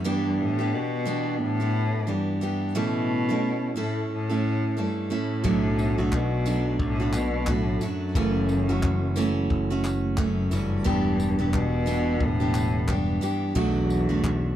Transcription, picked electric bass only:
5.45 5.95 B1 loud
5.99 6.11 B1 medium
6.12 6.76 B1 medium
6.79 7.77 B1 medium
8.15 8.65 F#1 loud
8.69 8.81 F#1 medium
8.83 9.46 F#1 loud
9.50 10.48 F#1 loud
10.52 10.83 F#1 medium
10.86 11.36 E1 loud
11.40 11.52 E1 medium
11.54 12.17 E1 loud
12.20 13.18 E1 loud
13.56 14.06 B1 loud
14.10 14.22 B1 medium
14.24 14.56 B1 medium

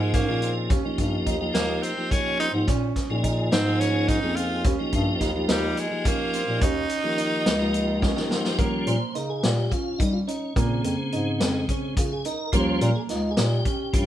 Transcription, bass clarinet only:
0.00 0.24 G#2 medium
0.29 0.67 A#2 medium
0.70 0.83 D#2 medium
0.98 1.28 G2 medium
1.27 1.52 D#2 medium
1.54 1.81 D#2 medium
2.53 2.66 G#2 medium
2.68 2.94 A#2 medium
3.10 3.49 A#2 medium
3.52 4.18 G#2 medium
4.22 4.61 F2 medium
4.65 4.78 D#2 medium
4.93 5.22 G2 loud
5.21 5.47 D#2 medium
5.49 5.75 D#2 medium
6.47 6.61 A#2 medium
6.62 6.88 D#2 medium
7.04 7.43 D#3 medium
7.46 8.13 C#2 medium
8.16 8.55 D#3 medium
8.59 8.85 D#3 medium
8.87 9.00 A#2 medium
9.15 9.41 C#3 medium
9.44 9.69 A#2 loud
10.00 10.26 G3 medium
10.56 10.82 A#2 medium
10.84 10.97 F2 medium
11.12 11.38 G#2 medium
11.41 11.67 F2 loud
11.97 12.23 C#3 medium
12.53 12.79 D#2 medium
12.81 12.94 A#2 loud
13.10 13.35 C#2 medium
13.37 13.63 A#2 loud
13.94 14.06 G2 medium

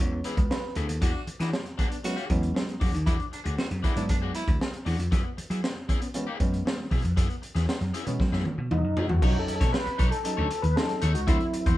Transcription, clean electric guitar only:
0.12 muted clean electric guitar stroke soft
0.25 0.43 B3 medium
0.25 0.38 E4 medium
0.25 0.37 G#4 medium
0.38 muted clean electric guitar stroke soft
0.50 muted clean electric guitar stroke soft
0.76 0.90 B3 medium
0.76 0.89 E4 medium
0.76 0.88 G#4 medium
0.89 muted clean electric guitar stroke medium
1.01 1.19 D4 medium
1.01 1.14 F#4 medium
1.01 1.13 G#4 medium
1.14 muted clean electric guitar stroke medium
1.27 muted clean electric guitar stroke soft
1.40 1.51 D4 medium
1.40 1.52 F#4 medium
1.40 1.52 G#4 medium
1.53 muted clean electric guitar stroke soft
1.65 muted clean electric guitar stroke soft
1.78 1.96 D4 medium
1.78 1.90 F#4 medium
1.78 1.89 G#4 loud
1.90 muted clean electric guitar stroke medium
2.04 muted clean electric guitar stroke soft
2.16 2.28 D4 medium
2.16 2.29 F#4 medium
2.16 2.29 G#4 medium
2.29 muted clean electric guitar stroke soft
2.42 muted clean electric guitar stroke soft
2.55 muted clean electric guitar stroke soft
2.80 2.95 D4 medium
2.80 2.93 F#4 medium
2.80 2.92 G#4 medium
2.93 muted clean electric guitar stroke soft
3.06 3.25 D4 medium
3.06 3.19 F#4 medium
3.06 3.18 G#4 loud
3.19 muted clean electric guitar stroke soft
3.32 muted clean electric guitar stroke soft
3.44 3.56 D4 soft
3.44 3.57 F#4 medium
3.44 3.57 G#4 medium
3.57 muted clean electric guitar stroke medium
3.70 muted clean electric guitar stroke soft
3.83 4.01 D4 medium
3.83 3.95 F#4 loud
3.83 3.94 G#4 loud
3.96 muted clean electric guitar stroke soft
4.09 muted clean electric guitar stroke soft
4.22 4.33 D4 medium
4.22 4.34 F#4 medium
4.22 4.34 G#4 medium
4.35 muted clean electric guitar stroke soft
4.48 muted clean electric guitar stroke soft
4.60 muted clean electric guitar stroke soft
4.85 5.00 D4 medium
4.85 4.99 F#4 medium
4.85 4.97 G#4 medium
4.99 muted clean electric guitar stroke soft
5.11 5.30 B3 medium
5.11 5.24 E4 medium
5.11 5.23 G#4 medium
5.25 muted clean electric guitar stroke soft
5.37 muted clean electric guitar stroke soft
5.50 5.62 B3 soft
5.50 5.62 E4 medium
5.50 5.63 G#4 medium
5.63 muted clean electric guitar stroke soft
5.76 muted clean electric guitar stroke soft
5.89 6.07 B3 medium
5.89 6.01 E4 medium
5.89 6.01 G#4 medium
6.02 muted clean electric guitar stroke soft
6.14 muted clean electric guitar stroke soft
6.27 6.39 B3 medium
6.27 6.39 E4 medium
6.27 6.40 G#4 medium
6.40 muted clean electric guitar stroke soft
6.53 muted clean electric guitar stroke soft
6.66 muted clean electric guitar stroke soft
6.91 7.05 B3 medium
6.91 7.03 E4 medium
6.91 7.02 G#4 medium
7.03 muted clean electric guitar stroke soft
7.16 7.35 B3 medium
7.16 7.29 E4 medium
7.16 7.28 G#4 medium
7.29 muted clean electric guitar stroke soft
7.42 muted clean electric guitar stroke soft
7.55 7.66 B3 medium
7.55 7.67 E4 medium
7.55 7.67 G#4 medium
7.68 muted clean electric guitar stroke soft
7.80 muted clean electric guitar stroke soft
7.94 8.12 B3 medium
7.94 8.06 E4 medium
7.94 8.05 G#4 medium
8.06 muted clean electric guitar stroke medium
8.19 muted clean electric guitar stroke medium
8.32 8.44 B3 medium
8.32 8.45 E4 medium
8.32 8.45 G#4 medium
8.45 muted clean electric guitar stroke soft
8.58 muted clean electric guitar stroke medium
8.71 muted clean electric guitar stroke soft
8.97 9.11 B3 medium
8.97 9.10 E4 medium
8.97 9.09 G#4 medium
9.10 muted clean electric guitar stroke medium
9.22 9.40 D#4 medium
9.22 9.35 A4 medium
9.22 9.34 C#5 loud
9.35 muted clean electric guitar stroke medium
9.48 muted clean electric guitar stroke soft
9.60 9.72 D#4 soft
9.60 9.72 A4 medium
9.60 9.72 C#5 medium
9.73 muted clean electric guitar stroke soft
9.85 muted clean electric guitar stroke soft
9.98 10.17 D#4 medium
9.98 10.11 A4 loud
9.98 10.10 C#5 loud
10.12 muted clean electric guitar stroke medium
10.24 muted clean electric guitar stroke soft
10.37 10.48 D#4 medium
10.37 10.49 A4 medium
10.37 10.49 C#5 medium
10.50 muted clean electric guitar stroke soft
10.63 muted clean electric guitar stroke medium
10.88 muted clean electric guitar stroke medium
11.02 11.20 D#4 loud
11.02 11.14 A4 medium
11.02 11.13 C#5 loud
11.14 muted clean electric guitar stroke soft
11.27 11.45 E4 medium
11.27 11.39 F#4 medium
11.27 11.39 C5 loud
11.40 muted clean electric guitar stroke medium
11.53 muted clean electric guitar stroke soft
11.66 11.78 E4 medium
11.66 11.78 F#4 medium
11.66 11.78 C5 medium

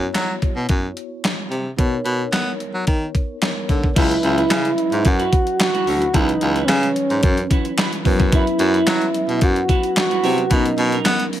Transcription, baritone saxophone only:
0.15 0.34 F#3 medium
0.56 0.65 B2 medium
0.69 0.89 F#2 medium
1.51 1.70 C3 medium
1.78 1.98 B2 medium
2.05 2.25 B2 medium
2.33 2.52 B3 medium
2.74 2.83 F#3 medium
2.88 3.07 D#3 loud
3.69 3.88 D3 medium
3.96 4.16 C#2 loud
4.24 4.43 C#2 loud
4.51 4.70 C#3 loud
4.92 5.02 G#2 medium
5.05 5.25 F#2 loud
5.87 6.06 D2 medium
6.14 6.34 C#2 loud
6.42 6.61 C#2 loud
6.69 6.88 C#3 loud
7.11 7.20 G#2 medium
7.23 7.43 F#2 loud
8.05 8.44 F#2 loud
8.60 8.79 F#2 loud
8.87 9.06 F#3 loud
9.29 9.38 B2 medium
9.42 9.61 F#2 loud
10.24 10.43 C3 medium
10.51 10.70 B2 loud
10.78 10.97 B2 loud
11.06 11.25 B3 medium

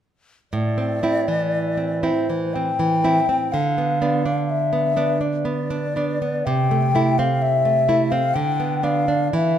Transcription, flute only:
0.52 2.05 D5 medium
2.03 2.55 C5 soft
2.54 3.54 G5 medium
3.52 4.51 F5 medium
4.50 5.21 E5 medium
5.45 6.47 D5 medium
6.45 7.20 G5 medium
7.18 7.43 F5 medium
7.42 8.13 E5 medium
8.11 8.36 F5 medium
8.34 8.85 G5 medium
8.84 9.33 F5 medium
9.33 9.59 E5 medium

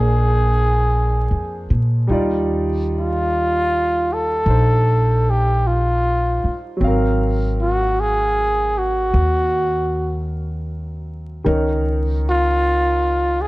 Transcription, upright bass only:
0.00 1.26 A#1 medium
1.31 1.68 F2 soft
1.70 2.07 A#2 medium
2.09 4.42 D#2 medium
4.46 6.39 A#1 medium
6.44 muted upright bass stroke soft
6.81 9.10 G#1 medium
9.14 11.42 D#2 medium
11.46 13.48 C#2 medium

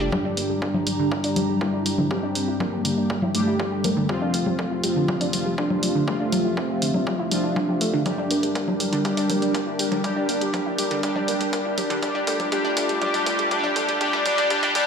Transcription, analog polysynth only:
0.12 1.58 G3 medium
0.12 1.58 D4 medium
0.12 1.58 G4 loud
1.61 2.08 G3 medium
1.61 2.08 D4 medium
1.61 2.08 G4 medium
2.11 3.32 G3 medium
2.11 3.32 D4 medium
2.11 3.32 G4 medium
3.35 4.06 G3 medium
3.35 4.06 D4 medium
3.35 4.06 G4 medium
4.09 5.55 F3 medium
4.09 5.55 C4 medium
4.09 5.55 F4 loud
5.58 6.05 F3 medium
5.58 6.05 C4 medium
5.58 6.05 F4 medium
6.08 7.29 F3 medium
6.08 7.29 C4 medium
6.08 7.29 F4 medium
7.32 8.03 F3 medium
7.32 8.03 C4 medium
7.32 8.03 F4 medium
8.06 9.03 G3 medium
8.06 9.03 D4 medium
8.06 9.03 G4 medium
9.05 10.02 G3 medium
9.05 10.02 D4 medium
9.05 10.02 G4 loud
10.04 11.01 G3 medium
10.04 11.01 D4 medium
10.04 11.01 G4 loud
11.03 12.00 G3 medium
11.03 12.00 D4 medium
11.03 12.00 G4 loud
12.02 12.50 G3 medium
12.02 12.50 D4 medium
12.02 12.50 G4 loud
12.52 13.00 G3 medium
12.52 13.00 D4 medium
12.52 13.00 G4 loud
13.02 13.49 G3 loud
13.02 13.49 D4 medium
13.02 13.49 G4 loud
13.51 13.99 G3 medium
13.51 13.99 D4 medium
13.51 13.99 G4 loud
14.01 14.24 G3 medium
14.01 14.24 D4 medium
14.01 14.24 G4 loud
14.26 14.48 G3 medium
14.26 14.48 D4 medium
14.26 14.48 G4 loud
14.50 14.73 G3 loud
14.50 14.73 D4 medium
14.50 14.73 G4 loud
14.75 14.87 G3 loud
14.75 14.87 D4 medium
14.75 14.87 G4 loud

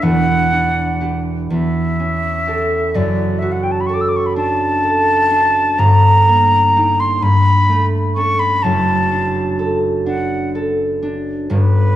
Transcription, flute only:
0.03 1.23 F#5 loud
1.50 2.97 E5 medium
2.95 3.40 D5 medium
3.39 3.53 E5 medium
3.52 3.65 F#5 medium
3.63 3.73 G5 medium
3.71 3.82 A5 medium
3.80 3.88 B5 medium
3.86 3.95 C#6 medium
3.94 4.03 D6 medium
4.01 4.10 E6 medium
4.08 4.18 D6 medium
4.16 4.28 C#6 medium
4.26 4.36 B5 medium
4.37 5.81 A5 loud
5.79 7.01 A#5 loud
7.00 7.24 C6 loud
7.22 7.86 B5 loud
8.15 8.41 C#6 loud
8.39 8.64 B5 loud
8.63 9.79 A5 loud
10.07 10.51 F#5 medium
11.51 11.96 B4 loud

